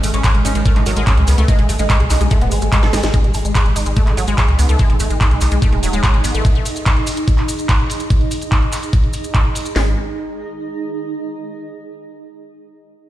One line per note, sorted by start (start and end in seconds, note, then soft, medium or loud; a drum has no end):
0.00 0.10 G#1 loud
0.00 0.10 D#3 medium
0.00 3.18 G#3 medium
0.00 0.08 A3 medium
0.00 open hi-hat loud
0.00 maracas medium
0.14 0.21 G#1 loud
0.14 0.24 G#3 medium
0.14 0.21 C#4 loud
0.14 closed hi-hat medium
0.14 maracas medium
0.24 0.31 D#3 medium
0.24 0.34 G#4 medium
0.24 kick loud
0.24 clap loud
0.24 closed hi-hat loud
0.24 maracas soft
0.34 0.41 G#1 medium
0.34 0.41 D#3 medium
0.34 0.44 G#3 medium
0.34 closed hi-hat medium
0.45 0.52 G#1 loud
0.45 0.52 C#4 loud
0.45 0.52 D#4 medium
0.45 open hi-hat loud
0.45 maracas medium
0.55 0.62 G#1 medium
0.55 0.62 D#3 medium
0.55 0.59 G#3 medium
0.55 closed hi-hat medium
0.55 maracas medium
0.65 0.72 D#3 medium
0.65 0.70 A3 loud
0.65 kick loud
0.65 closed hi-hat medium
0.65 maracas soft
0.76 0.83 G#1 medium
0.76 0.80 G#3 medium
0.76 0.83 D#4 loud
0.76 clap soft
0.76 closed hi-hat medium
0.86 0.93 G#1 loud
0.86 0.93 D#3 medium
0.86 0.90 F#3 loud
0.86 open hi-hat loud
0.86 maracas medium
0.96 1.03 G#1 medium
0.96 1.03 D#3 medium
0.96 1.03 G#3 loud
0.96 closed hi-hat medium
0.96 maracas medium
1.07 1.14 C#4 loud
1.07 1.17 G#4 medium
1.07 kick loud
1.07 clap loud
1.07 open hi-hat medium
1.07 maracas soft
1.17 1.24 C#2 medium
1.17 1.24 D#3 medium
1.17 1.27 G#3 medium
1.17 closed hi-hat medium
1.27 1.34 C#2 loud
1.27 1.34 D#3 medium
1.27 1.37 B3 medium
1.27 open hi-hat loud
1.27 maracas medium
1.38 1.45 C#2 medium
1.38 1.45 D#3 medium
1.38 1.45 A3 loud
1.38 closed hi-hat medium
1.38 maracas soft
1.48 1.57 G#3 loud
1.48 1.55 D#4 loud
1.48 kick loud
1.48 closed hi-hat loud
1.48 maracas soft
1.59 1.65 G#1 medium
1.59 1.63 G#3 medium
1.59 1.65 G#3 medium
1.59 closed hi-hat medium
1.69 1.76 G#1 loud
1.69 1.76 G#3 medium
1.69 1.73 A3 medium
1.69 open hi-hat loud
1.69 maracas medium
1.79 1.86 G#1 medium
1.79 1.89 G#3 medium
1.79 1.86 D#4 medium
1.79 closed hi-hat medium
1.79 maracas medium
1.90 1.96 G#3 medium
1.90 2.00 G#4 medium
1.90 kick loud
1.90 clap loud
1.90 closed hi-hat loud
1.90 maracas soft
2.00 2.07 B1 medium
2.00 2.10 G#3 medium
2.00 2.07 G#3 medium
2.00 closed hi-hat medium
2.10 2.17 B1 loud
2.10 2.17 D#4 medium
2.10 clap soft
2.10 open hi-hat loud
2.10 maracas medium
2.21 2.27 B1 medium
2.21 2.25 G#3 medium
2.21 2.28 G#3 medium
2.21 closed hi-hat medium
2.21 maracas soft
2.30 2.38 G#3 medium
2.30 2.35 A3 loud
2.30 kick loud
2.30 closed hi-hat loud
2.30 maracas soft
2.41 2.48 D#1 medium
2.41 2.45 G#3 medium
2.41 2.48 B3 loud
2.41 closed hi-hat medium
2.51 2.58 G#1 loud
2.51 2.62 G#3 medium
2.51 2.59 G#3 medium
2.51 open hi-hat loud
2.51 maracas loud
2.62 2.69 G#1 loud
2.62 2.69 G#3 medium
2.62 2.69 A3 medium
2.62 closed hi-hat medium
2.62 maracas soft
2.72 2.76 G#3 medium
2.72 2.79 G#3 loud
2.72 kick loud
2.72 clap loud
2.72 closed hi-hat loud
2.72 maracas soft
2.83 2.89 G#1 medium
2.83 2.90 G#3 medium
2.83 2.90 A4 loud
2.83 snare soft
2.83 closed hi-hat medium
2.93 3.00 G#1 loud
2.93 3.00 G#3 medium
2.93 3.03 G#3 loud
2.93 snare medium
2.93 open hi-hat loud
2.93 maracas medium
3.03 3.10 G#1 medium
3.03 3.10 G#3 medium
3.03 3.10 G#4 medium
3.03 snare medium
3.03 closed hi-hat medium
3.03 maracas medium
3.14 3.23 G#3 loud
3.14 9.75 D#4 medium
3.14 kick loud
3.14 closed hi-hat medium
3.14 maracas soft
3.24 3.31 G#1 medium
3.24 3.28 G#3 medium
3.24 9.76 G#4 medium
3.24 9.76 D#5 medium
3.24 closed hi-hat medium
3.34 3.41 G#1 loud
3.34 3.39 A3 medium
3.34 open hi-hat loud
3.34 maracas medium
3.45 3.52 G#1 medium
3.45 3.55 G#3 medium
3.45 closed hi-hat medium
3.45 maracas medium
3.55 3.65 G#4 medium
3.55 kick loud
3.55 clap loud
3.55 closed hi-hat medium
3.55 maracas soft
3.66 3.72 G#1 medium
3.66 3.75 G#3 medium
3.66 closed hi-hat medium
3.76 3.83 G#1 loud
3.76 3.83 D#4 medium
3.76 open hi-hat loud
3.76 maracas medium
3.86 3.93 G#1 medium
3.86 3.90 G#3 medium
3.86 closed hi-hat medium
3.86 maracas soft
3.96 4.01 A3 loud
3.96 kick loud
3.96 closed hi-hat medium
3.96 maracas soft
4.07 4.14 G#1 medium
4.07 4.11 G#3 medium
4.07 clap soft
4.07 closed hi-hat medium
4.17 4.24 G#1 loud
4.17 4.21 F#3 loud
4.17 open hi-hat loud
4.17 maracas medium
4.28 4.34 G#1 loud
4.28 4.34 G#3 loud
4.28 closed hi-hat soft
4.28 maracas medium
4.38 4.48 G#4 medium
4.38 kick loud
4.38 clap loud
4.38 closed hi-hat medium
4.38 maracas soft
4.48 4.55 C#2 medium
4.48 4.58 G#3 medium
4.48 closed hi-hat medium
4.59 4.65 C#2 loud
4.59 4.69 B3 medium
4.59 open hi-hat loud
4.59 maracas medium
4.69 4.76 C#2 medium
4.69 4.76 A3 medium
4.69 closed hi-hat medium
4.69 maracas medium
4.79 4.89 G#3 loud
4.79 kick loud
4.79 closed hi-hat medium
4.79 maracas soft
4.90 4.96 G#1 medium
4.90 4.94 G#3 medium
4.90 closed hi-hat medium
5.00 5.07 G#1 loud
5.00 5.04 A3 medium
5.00 open hi-hat loud
5.00 maracas medium
5.10 5.17 G#1 medium
5.10 5.20 G#3 medium
5.10 closed hi-hat medium
5.10 maracas medium
5.21 5.31 G#4 medium
5.21 kick loud
5.21 clap loud
5.21 closed hi-hat loud
5.21 maracas soft
5.31 5.38 B1 medium
5.31 5.41 G#3 medium
5.31 closed hi-hat medium
5.41 5.48 B1 loud
5.41 5.48 D#4 medium
5.41 clap soft
5.41 open hi-hat loud
5.41 maracas loud
5.51 5.58 B1 medium
5.51 5.56 G#3 medium
5.51 closed hi-hat medium
5.51 maracas medium
5.62 5.66 A3 loud
5.62 kick loud
5.62 closed hi-hat medium
5.62 maracas soft
5.72 5.79 D#1 medium
5.72 5.76 G#3 medium
5.72 closed hi-hat medium
5.83 5.89 D#1 loud
5.83 5.87 F#3 loud
5.83 open hi-hat loud
5.83 maracas medium
5.93 6.00 D#1 medium
5.93 6.00 G#3 loud
5.93 closed hi-hat soft
5.93 maracas medium
6.03 6.13 G#4 medium
6.03 kick loud
6.03 clap loud
6.03 closed hi-hat medium
6.03 maracas soft
6.14 6.21 G#1 medium
6.14 6.24 G#3 medium
6.14 closed hi-hat medium
6.24 6.31 G#1 loud
6.24 6.34 B3 medium
6.24 open hi-hat loud
6.24 maracas loud
6.35 6.41 G#1 medium
6.35 6.41 A3 medium
6.35 closed hi-hat medium
6.35 maracas medium
6.45 kick loud
6.45 closed hi-hat medium
6.45 maracas soft
6.55 closed hi-hat medium
6.66 open hi-hat loud
6.66 maracas medium
6.76 closed hi-hat medium
6.76 maracas medium
6.86 kick loud
6.86 clap loud
6.86 closed hi-hat medium
6.86 maracas soft
6.97 closed hi-hat medium
7.07 open hi-hat loud
7.07 maracas medium
7.17 closed hi-hat medium
7.17 maracas medium
7.28 kick loud
7.28 closed hi-hat medium
7.28 maracas soft
7.38 clap soft
7.38 closed hi-hat medium
7.48 open hi-hat loud
7.48 maracas loud
7.59 closed hi-hat soft
7.59 maracas medium
7.69 kick loud
7.69 clap loud
7.69 closed hi-hat medium
7.69 maracas soft
7.79 closed hi-hat soft
7.90 open hi-hat loud
7.90 maracas loud
8.00 closed hi-hat medium
8.00 maracas medium
8.10 kick loud
8.10 closed hi-hat medium
8.10 maracas soft
8.21 closed hi-hat soft
8.31 open hi-hat loud
8.31 maracas medium
8.41 closed hi-hat medium
8.41 maracas medium
8.52 kick loud
8.52 clap loud
8.52 closed hi-hat medium
8.52 maracas soft
8.62 closed hi-hat medium
8.72 clap soft
8.72 open hi-hat loud
8.72 maracas loud
8.83 closed hi-hat medium
8.83 maracas medium
8.93 kick loud
8.93 closed hi-hat medium
8.93 maracas soft
9.03 closed hi-hat medium
9.13 open hi-hat loud
9.13 maracas medium
9.24 closed hi-hat soft
9.24 maracas medium
9.34 kick loud
9.34 clap loud
9.34 closed hi-hat medium
9.34 maracas soft
9.45 closed hi-hat soft
9.55 open hi-hat loud
9.55 maracas medium
9.66 closed hi-hat medium
9.66 maracas medium
9.76 9.95 G#1 loud
9.76 9.95 G#3 medium
9.76 11.37 D#4 medium
9.76 snare loud
9.76 open hi-hat medium
9.82 11.37 G#4 medium